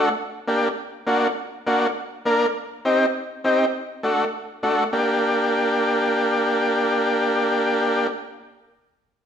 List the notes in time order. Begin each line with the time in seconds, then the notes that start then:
0.47 A#3 D4 G4
1.07 A#3 D4 F#4
1.66 A#3 D4 F#4
2.25 A#3 D4 A#4
2.85 C4 D#4 G4
3.44 C4 D#4 G4
4.03 A3 D4 F#4
4.63 A3 D4 F#4
4.93 A#3 D4 G4